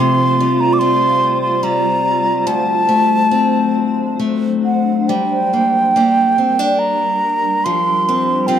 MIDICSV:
0, 0, Header, 1, 4, 480
1, 0, Start_track
1, 0, Key_signature, -2, "minor"
1, 0, Tempo, 823045
1, 1435, Time_signature, 3, 2, 24, 8
1, 1435, Tempo, 872093
1, 3355, Tempo, 842697
1, 4861, End_track
2, 0, Start_track
2, 0, Title_t, "Flute"
2, 0, Program_c, 0, 73
2, 0, Note_on_c, 0, 84, 100
2, 352, Note_on_c, 0, 82, 84
2, 361, Note_off_c, 0, 84, 0
2, 426, Note_on_c, 0, 86, 74
2, 435, Note_off_c, 0, 82, 0
2, 461, Note_on_c, 0, 84, 91
2, 470, Note_off_c, 0, 86, 0
2, 824, Note_off_c, 0, 84, 0
2, 826, Note_on_c, 0, 84, 79
2, 954, Note_on_c, 0, 82, 89
2, 962, Note_off_c, 0, 84, 0
2, 1439, Note_on_c, 0, 81, 90
2, 1447, Note_off_c, 0, 82, 0
2, 2389, Note_off_c, 0, 81, 0
2, 2640, Note_on_c, 0, 78, 68
2, 2878, Note_on_c, 0, 79, 77
2, 2887, Note_off_c, 0, 78, 0
2, 3834, Note_on_c, 0, 82, 85
2, 3842, Note_off_c, 0, 79, 0
2, 4321, Note_on_c, 0, 84, 93
2, 4329, Note_off_c, 0, 82, 0
2, 4790, Note_on_c, 0, 79, 83
2, 4799, Note_off_c, 0, 84, 0
2, 4861, Note_off_c, 0, 79, 0
2, 4861, End_track
3, 0, Start_track
3, 0, Title_t, "Ambient pad"
3, 0, Program_c, 1, 92
3, 0, Note_on_c, 1, 55, 72
3, 0, Note_on_c, 1, 65, 68
3, 0, Note_on_c, 1, 72, 81
3, 1411, Note_off_c, 1, 65, 0
3, 1421, Note_off_c, 1, 55, 0
3, 1434, Note_on_c, 1, 62, 67
3, 1441, Note_on_c, 1, 54, 70
3, 2857, Note_off_c, 1, 72, 0
3, 2864, Note_off_c, 1, 62, 0
3, 2867, Note_off_c, 1, 54, 0
3, 2876, Note_on_c, 1, 55, 63
3, 2879, Note_on_c, 1, 70, 78
3, 2880, Note_on_c, 1, 62, 65
3, 4311, Note_off_c, 1, 62, 0
3, 4311, Note_off_c, 1, 70, 0
3, 4323, Note_on_c, 1, 72, 70
3, 4324, Note_on_c, 1, 65, 63
3, 4861, Note_off_c, 1, 55, 0
3, 4861, Note_off_c, 1, 65, 0
3, 4861, Note_off_c, 1, 72, 0
3, 4861, End_track
4, 0, Start_track
4, 0, Title_t, "Steel-string acoustic guitar"
4, 0, Program_c, 2, 25
4, 0, Note_on_c, 2, 48, 83
4, 0, Note_on_c, 2, 53, 76
4, 0, Note_on_c, 2, 60, 55
4, 233, Note_off_c, 2, 60, 0
4, 236, Note_on_c, 2, 55, 54
4, 253, Note_off_c, 2, 53, 0
4, 471, Note_on_c, 2, 60, 59
4, 943, Note_off_c, 2, 55, 0
4, 950, Note_on_c, 2, 55, 50
4, 1431, Note_off_c, 2, 48, 0
4, 1439, Note_on_c, 2, 38, 77
4, 1482, Note_off_c, 2, 55, 0
4, 1669, Note_on_c, 2, 57, 54
4, 1902, Note_off_c, 2, 60, 0
4, 1904, Note_on_c, 2, 60, 53
4, 2383, Note_off_c, 2, 57, 0
4, 2390, Note_on_c, 2, 57, 48
4, 2880, Note_off_c, 2, 38, 0
4, 2883, Note_on_c, 2, 55, 63
4, 2928, Note_off_c, 2, 57, 0
4, 2928, Note_off_c, 2, 60, 0
4, 3127, Note_on_c, 2, 58, 39
4, 3355, Note_off_c, 2, 58, 0
4, 3361, Note_on_c, 2, 58, 48
4, 3365, Note_on_c, 2, 62, 39
4, 3368, Note_on_c, 2, 67, 51
4, 3599, Note_off_c, 2, 62, 0
4, 3601, Note_on_c, 2, 60, 46
4, 3720, Note_off_c, 2, 60, 0
4, 3720, Note_on_c, 2, 62, 40
4, 4327, Note_on_c, 2, 53, 71
4, 4344, Note_off_c, 2, 55, 0
4, 4377, Note_off_c, 2, 62, 0
4, 4379, Note_off_c, 2, 58, 0
4, 4572, Note_on_c, 2, 60, 51
4, 4789, Note_off_c, 2, 60, 0
4, 4796, Note_on_c, 2, 60, 54
4, 4800, Note_on_c, 2, 65, 55
4, 4802, Note_off_c, 2, 67, 0
4, 4805, Note_on_c, 2, 67, 49
4, 4861, Note_off_c, 2, 53, 0
4, 4861, Note_off_c, 2, 60, 0
4, 4861, Note_off_c, 2, 65, 0
4, 4861, Note_off_c, 2, 67, 0
4, 4861, End_track
0, 0, End_of_file